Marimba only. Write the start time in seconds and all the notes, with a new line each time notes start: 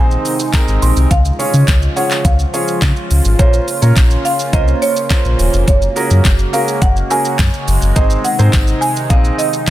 Already playing: G#5
0.82 C6
1.11 F5
1.96 F#5
2.25 F5
3.39 C#5
4.25 F5
4.53 D#5
4.82 C#5
5.68 C#5
6.53 F5
6.82 F#5
7.11 G#5
7.96 D#5
8.25 F#5
8.81 G#5
9.10 F5
9.38 D#5